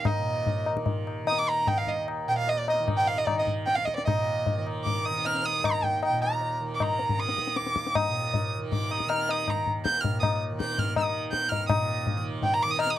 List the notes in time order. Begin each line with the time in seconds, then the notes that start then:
Already playing: D#2 A#2 D#3
0.05 D#5, tabla na, tabla ge
0.19 A#2
0.47 tabla tin, tabla ge
0.66 tabla na
0.72 D#3
0.77 tabla ke
0.86 tabla tin, tabla ge
1.07 tabla na
1.24 D#3 D#6, tabla na
1.38 D6
1.49 A#5
1.67 G5, tabla na, tabla ge
1.75 D#2 F5
1.87 D#5, tabla ge
2.08 tabla na
2.27 A#2 G5
2.38 F5
2.48 D#5, tabla tin
2.59 D5
2.68 D#5, tabla na
2.80 D#3
2.88 tabla na, tabla ge
2.97 G5
3.07 F5
3.18 D#5
3.26 D5, tabla na, tabla ge
3.31 D#3
3.39 D#5
3.47 tabla ge
3.66 G5, tabla te
3.75 F5, tabla te
3.81 D#2
3.85 D#5, tabla ke
3.96 D5, tabla te
4.05 A#2 D#5, tabla na, tabla ge
4.46 tabla tin, tabla ge
4.58 D#3
4.67 tabla na
4.84 D6, tabla tin, tabla ge
5.05 D#6, tabla na
5.11 D#3
5.25 F6, tabla na
5.45 D#6
5.59 D#2
5.64 A#5, tabla na, tabla ge
5.83 G5, tabla ge
6.03 G5, tabla na
6.10 A#2
6.22 A#5, tabla na
6.41 tabla tin
6.60 D#3
6.75 D6
6.80 A#5, tabla na, tabla ge
6.99 tabla te
7.09 D#3, tabla ge
7.19 D#6, tabla te
7.29 tabla te
7.38 tabla ke
7.47 tabla te
7.56 D6, tabla te
7.60 D#2
7.67 tabla te
7.76 tabla ke
7.87 tabla te
7.95 D#6, tabla na, tabla ge
8.08 A#2
8.34 tabla tin, tabla ge
8.57 D#3
8.72 D6, tabla tin, tabla ge
8.91 D#6, tabla na
9.00 tabla ke
9.07 D#3 F6, tabla na
9.29 D#6, tabla na
9.48 A#5, tabla na, tabla ge
9.55 D#2
9.67 tabla ge
9.85 G6, tabla ke
10.01 A#2 F6, tabla tin, tabla ge
10.20 D#6, tabla na, tabla ge
10.51 D#3
10.60 G6, tabla ke
10.78 F6, tabla tin, tabla ge
10.96 D#3 D#6, tabla na, tabla ge
11.32 G6, tabla ke
11.47 D#2 F6
11.52 tabla tin, tabla ge
11.67 D#6, tabla na, tabla ge
11.71 A#2
12.07 tabla tin, tabla ge
12.17 D#3
12.42 G5, tabla tin, tabla ge
12.54 A#5
12.62 D#3 D6
12.71 D#6
12.79 F6, tabla na
12.90 D#6